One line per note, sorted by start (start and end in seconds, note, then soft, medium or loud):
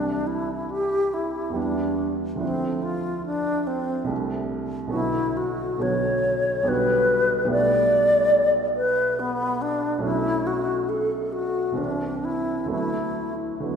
0.00 1.49 C2 soft
0.00 1.49 E3 soft
0.00 1.50 G3 soft
0.00 0.29 D4 soft
0.00 1.51 D4 soft
0.00 1.51 E4 soft
0.27 0.72 E4 medium
0.70 1.15 G4 medium
1.14 1.58 E4 medium
1.50 2.36 E2 soft
1.50 2.36 E3 soft
1.50 2.37 G3 soft
1.50 2.38 B3 soft
1.55 2.14 D4 medium
1.55 2.38 E4 soft
2.36 4.04 D2 soft
2.36 4.04 F3 soft
2.36 4.05 A3 soft
2.36 4.06 D4 soft
2.41 2.84 C4 medium
2.41 4.06 E4 soft
2.83 3.26 F4 medium
3.26 3.68 D4 medium
3.67 4.10 C4 soft
4.04 4.88 C2 soft
4.04 4.89 G3 soft
4.04 4.89 A3 soft
4.09 4.90 D4 soft
4.09 4.91 E4 soft
4.87 5.76 B1 soft
4.87 5.78 D3 soft
4.87 5.78 F#3 soft
4.87 5.80 B3 soft
4.92 5.38 E4 medium
4.92 5.81 F#4 soft
5.37 5.83 F#4 medium
5.78 6.62 B1 soft
5.78 6.63 D3 soft
5.78 6.65 F#3 soft
5.78 6.65 B3 soft
5.82 6.66 F#4 soft
5.82 6.70 C#5 medium
6.63 7.43 B1 soft
6.63 7.47 D3 soft
6.63 7.45 G3 soft
6.67 7.47 B3 soft
6.67 7.49 F#4 soft
6.67 7.51 B4 medium
7.44 9.97 B1 soft
7.44 9.98 G3 soft
7.44 9.98 A3 soft
7.49 9.99 B3 soft
7.49 10.00 E4 soft
7.49 8.53 D5 medium
8.77 9.21 B4 medium
9.20 9.63 B3 medium
9.62 10.03 D4 medium
9.98 11.71 B1 soft
9.98 11.71 F#3 soft
9.98 11.72 A3 soft
9.98 11.73 C#4 soft
10.03 11.73 D4 soft
10.03 10.48 E4 medium
10.47 10.91 F#4 medium
10.89 11.34 A4 medium
11.33 11.79 F#4 medium
11.72 12.66 C2 soft
11.72 12.66 E3 soft
11.72 12.67 A#3 soft
11.72 12.67 C4 soft
11.77 12.26 D4 medium
11.77 12.68 D4 soft
12.25 12.71 E4 medium
12.65 13.58 D2 soft
12.65 13.59 F#3 soft
12.65 13.61 A3 soft
12.70 13.62 B3 soft
12.70 13.63 D4 soft
12.70 13.34 E4 medium
13.60 13.76 D2 soft
13.60 13.76 F#3 soft
13.60 13.76 A3 soft
13.60 13.76 B3 soft
13.65 13.76 D4 soft